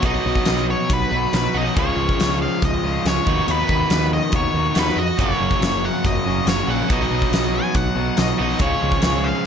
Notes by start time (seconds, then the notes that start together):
0.01 B1 B2 F#3 B3 D#4 F#4, kick, closed hi-hat
0.06 D#5
0.26 B1
0.35 kick
0.45 B1, snare, closed hi-hat
0.70 C#5
0.90 B1 B4, kick, closed hi-hat
1.11 B1 B2 F#3 B3 D#4 F#4
1.32 B1 B2 F#3 B3 D#4 F#4 B4, snare, closed hi-hat
1.54 B1 B2 F#3 B3 D#4 F#4 D#5
1.75 C#2 C#3 F3 G#3 C#4 F4 C#5, kick, closed hi-hat
1.96 C#2
2.09 kick
2.18 C#2, snare, closed hi-hat
2.42 F5
2.62 C#2 D#5, kick, closed hi-hat
2.83 C#2 C#3 F3 G#3 C#4 F4
3.05 C#2 C#3 F3 G#3 C#4 F4 C#5, snare, closed hi-hat
3.26 D#2 D#3 B3 D#4 F#4, kick
3.48 D#2 B4, closed hi-hat
3.69 D#2, kick
3.90 D#2, snare, closed hi-hat
4.13 D#5
4.32 D#2 D#3 B3 D#4 F#4 C#5, kick, closed hi-hat
4.54 D#2 B3 D#4 F#4
4.58 D#3
4.75 D#2 D#3 B3 D#4 F#4, snare, closed hi-hat
4.79 B4
4.88 snare
4.96 F2 D#5
5.19 F#1 F#2 C#3 F#3 A#3 C#4 F#4 C#5, kick, closed hi-hat
5.40 F#1
5.51 kick
5.62 F#1, snare, closed hi-hat
5.85 F#5
6.05 F#1 D#5, kick, closed hi-hat
6.26 F#1 F#2 C#3 F#3 A#3 C#4 F#4
6.46 F#1 F#2 C#3 F#3 A#3 C#4 F#4 C#5, snare, closed hi-hat
6.67 A#1 C#3 F#3 A#3 C#4 F#4 F#5
6.71 F#2
6.88 B1 B2 F#3 B3 D#4 F#4, kick, closed hi-hat
6.93 D#5
7.11 B1
7.22 kick
7.31 B1, snare, closed hi-hat
7.56 G#5
7.74 B1 F#5, kick, closed hi-hat
7.95 B1 B2 F#3 B3 D#4 F#4
8.17 B1 B2 F#3 B3 D#4 F#4 D#5, snare, closed hi-hat
8.38 B1 B2 F#3 B3 D#4 F#4 D#5
8.59 C#2 C#3 F3 G#3 C#4 F4 C#5, kick, closed hi-hat
8.83 C#2
8.92 kick
9.02 C#2, snare, closed hi-hat
9.24 F5